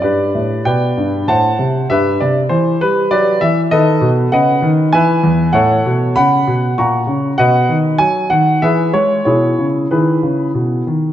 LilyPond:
<<
  \new Staff \with { instrumentName = "Grand piano" } { \time 3/4 \key g \major \tempo 4 = 98 <g' b' d''>4 <b' d'' g''>4 <c'' fis'' a''>4 | <g' b' e''>8 d''8 c''8 b'8 <g' b' d''>8 e''8 | \key e \major <a' b' dis''>4 <b' dis'' fis''>4 <b' e'' gis''>4 | <a' cis'' fis''>4 <fis'' b''>4 <fis'' ais'' cis'''>4 |
<b' dis'' fis''>4 gis''8 fis''8 <gis' b' e''>8 cis''8 | <e' gis' cis''>4 <e' gis' b'>4. r8 | }
  \new Staff \with { instrumentName = "Grand piano" } { \clef bass \time 3/4 \key g \major g,8 a,8 b,8 g,8 a,8 c8 | g,8 c8 e8 g8 fis8 e8 | \key e \major dis8 b,8 cis8 dis8 e8 e,8 | a,8 b,8 cis8 b,8 ais,8 cis8 |
b,8 dis8 fis8 dis8 e8 gis8 | b,8 cis8 dis8 cis8 b,8 dis8 | }
>>